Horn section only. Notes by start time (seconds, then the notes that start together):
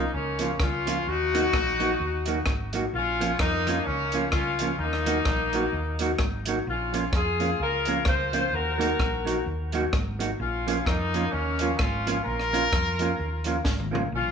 Already playing: A#3 D#4
0.14 A#3 C#4
0.62 C#4 F4
1.08 D#4 F#4
2.95 C#4 F4
3.39 A#3 D#4
3.85 A#3 C#4
4.30 C#4 F4
4.79 A#3 D#4
6.69 C#4 F4
7.15 F4 G#4
7.61 F4 A#4
8.07 F4 C5
8.54 F#4 A#4
10.40 C#4 F4
10.86 A#3 D#4
11.32 A#3 C#4
11.77 C#4 F4
12.23 F4 A#4
14.14 C#4 F4